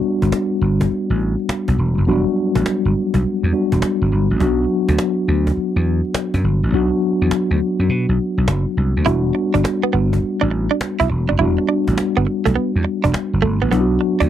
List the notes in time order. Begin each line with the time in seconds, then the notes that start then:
Already playing: G3 B3 D4 F#4
0.03 cajon slap
0.22 G1, cajon bass
0.32 cajon slap
0.61 G1, cajon slap
0.81 cajon bass
0.91 muted slap bass stroke, cajon slap
1.10 A1
1.20 cajon slap
1.40 cajon slap
1.49 cajon slap
1.68 B1, cajon bass
1.78 E1, cajon slap
1.97 F#1, cajon slap
2.06 E1 F#3 B3 D4 F#4, cajon slap
2.12 G3
2.36 cajon slap
2.55 A1, cajon bass
2.66 cajon slap
2.85 G1
2.95 cajon slap
3.14 B1, cajon bass
3.24 muted slap bass stroke, cajon slap
3.43 E2
3.53 G3 B3 D4 F#4, cajon slap
3.72 E1, cajon bass
3.82 cajon slap
4.02 G1
4.11 G1, cajon slap
4.30 A1, cajon slap
4.39 B1 F#3 B3 D4 F#4, cajon bass
4.69 cajon slap
4.88 D2, cajon bass
4.99 cajon slap
5.27 D2, cajon slap
5.47 cajon bass
5.57 muted slap bass stroke, cajon slap
5.76 E2
5.85 cajon slap
6.05 cajon slap
6.14 cajon slap
6.34 F#2, cajon bass
6.44 G1, cajon slap
6.63 A1, cajon slap
6.73 B1 F#3 B3 D4 F#4, cajon slap
7.02 cajon slap
7.21 E2, cajon slap
7.31 cajon slap
7.51 D2
7.60 cajon slap
7.79 F#2, cajon slap
7.89 B2, cajon slap
8.09 B1
8.19 cajon slap
8.38 B1, cajon slap
8.48 F#1, cajon slap
8.77 C2, cajon slap
8.96 D2, cajon slap
9.05 E1 G3 B3 D4 E4 F#4, cajon bass
9.35 muted clean electric guitar stroke, cajon slap
9.54 G1 D4, cajon bass
9.64 muted clean electric guitar stroke, cajon slap
9.83 B3
9.93 G1 B3, cajon slap
10.13 cajon bass
10.23 cajon slap
10.41 A1 D4
10.51 muted clean electric guitar stroke, cajon slap
10.71 D4, cajon slap
10.81 cajon slap
11.00 B1 E4, cajon bass
11.10 E1, muted clean electric guitar stroke
11.29 F#1 D4, cajon slap
11.39 E1 G3 B3 D4 E4 F#4, cajon slap
11.58 muted clean electric guitar stroke
11.68 D4, cajon slap
11.88 A1, cajon bass
11.98 cajon slap
12.17 G1 B3
12.27 muted clean electric guitar stroke, cajon slap
12.45 B1 A3, cajon bass
12.55 B3, muted slap bass stroke
12.76 E2
12.85 muted clean electric guitar stroke, cajon slap
13.04 E1 D4, cajon bass
13.14 muted clean electric guitar stroke, cajon slap
13.33 G1
13.42 G1 A3, cajon slap
13.62 A1 B3, cajon slap
13.71 B1 F#3 B3 D4 E4, cajon bass
13.81 F#4
14.01 muted clean electric guitar stroke, cajon slap
14.20 D2 D4, cajon bass